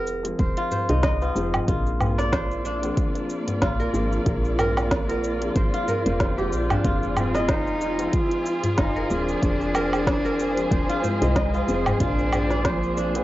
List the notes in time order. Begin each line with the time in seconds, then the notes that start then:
Already playing: F1 F3 G#3 C4 F4 G#4 A#4
0.07 shaker
0.23 F3 G#3 C4 F4 G#4, closed hi-hat, shaker
0.39 D#1 C5, kick, closed hi-hat, shaker
0.57 F4, closed hi-hat, shaker
0.71 C5, tabla tin, tabla ge, shaker
0.89 C2 D#4, closed hi-hat, shaker
1.03 D#5, kick, snare, closed hi-hat, shaker
1.22 F4, tabla na, shaker
1.35 F1 F3 G#3 C4 F4 G#4, shaker
1.54 tabla ge, low woodblock, shaker
1.66 A#1 F3 A#3 C4 D4 F4 G#4, kick, closed hi-hat, shaker
1.87 shaker
1.92 F4
2.01 tabla tin, tabla ge, low woodblock, shaker
2.18 D5, snare, shaker
2.32 C5 D5, kick, snare, closed hi-hat, shaker
2.51 shaker
2.65 D4, shaker
2.81 F3 A#3 C4 D4, closed hi-hat, tabla na, shaker
2.85 G#4
2.97 kick, closed hi-hat, shaker
3.15 closed hi-hat, tabla tin, shaker
3.30 shaker
3.48 closed hi-hat, tabla na, tabla ge, shaker
3.62 A#1 F4, kick, snare, closed hi-hat, shaker
3.80 A#4, shaker
3.93 G#1 F3 A#3 C4 D4 G#4, shaker
4.12 shaker
4.25 A#1 F3 A#3 C4 D4 G#4, kick, closed hi-hat, shaker
4.45 shaker
4.59 A#4, tabla tin, tabla ge, low woodblock, shaker
4.77 snare, low woodblock, shaker
4.91 kick, snare, closed hi-hat, shaker
5.09 A#4, closed hi-hat, tabla na, shaker
5.24 shaker
5.39 F3 A#3 C4 D4, closed hi-hat, shaker
5.44 G#4
5.55 G#1 C5, kick, closed hi-hat, shaker
5.74 F4, closed hi-hat, shaker
5.88 A#4, tabla tin, tabla ge, shaker
6.06 F1 C5, closed hi-hat, shaker
6.19 F1 F3 A#3 C4 D4 G4 C5, kick, snare, closed hi-hat, shaker
6.37 F3 G#3 A#3 C4 D4 G4, tabla na, shaker
6.52 A#1, shaker
6.70 D4, tabla ge, low woodblock, shaker
6.82 F1 F3 G#3 C4 F4 G#4 C5, kick, closed hi-hat, shaker
7.03 G#4, shaker
7.16 C4, tabla tin, tabla ge, low woodblock, shaker
7.35 D#5, snare, shaker
7.49 D#4 C5, kick, snare, closed hi-hat, shaker
7.67 shaker
7.81 D#4, shaker
7.98 F3 G#3 C4 F4 G#4, closed hi-hat, tabla na, shaker
8.13 F4 C5, kick, closed hi-hat, shaker
8.31 closed hi-hat, tabla tin, shaker
8.46 shaker
8.64 closed hi-hat, tabla na, tabla ge, shaker
8.78 F1 D#4 F4, kick, snare, closed hi-hat, shaker
8.96 A#4, shaker
9.09 D#1 F3 G#3 C4 D4 F4 G#4, shaker
9.29 shaker
9.41 F1 F3 G#3 C4 F4 G#4, kick, closed hi-hat, shaker
9.61 shaker
9.75 A#4, tabla tin, low woodblock, shaker
9.93 low woodblock, shaker
10.07 kick, snare, closed hi-hat, shaker
10.25 A#4, tabla na, shaker
10.40 shaker
10.55 F3 G#3 C4 F4, closed hi-hat, shaker
10.60 G#4
10.71 D#1 C5, kick, closed hi-hat, shaker
10.89 F4, closed hi-hat, shaker
11.04 G#3 C5, tabla tin, tabla ge, shaker
11.22 C2 D#4, closed hi-hat, shaker
11.36 D#5, kick, snare, closed hi-hat, shaker
11.54 F4, tabla na, shaker
11.67 F1 F3 G#3 C4 F4 G#4, shaker
11.86 tabla ge, low woodblock, shaker
11.99 A#1 F3 A#3 C4 D4 F4, kick, closed hi-hat, shaker
12.03 G#4
12.19 shaker
12.33 tabla tin, tabla ge, low woodblock, shaker
12.51 D5, snare, shaker
12.65 F3 C5, kick, snare, closed hi-hat, shaker
12.83 shaker
12.97 D4, shaker
13.14 F3 A#3 C4 D4 G#4, closed hi-hat, tabla na, shaker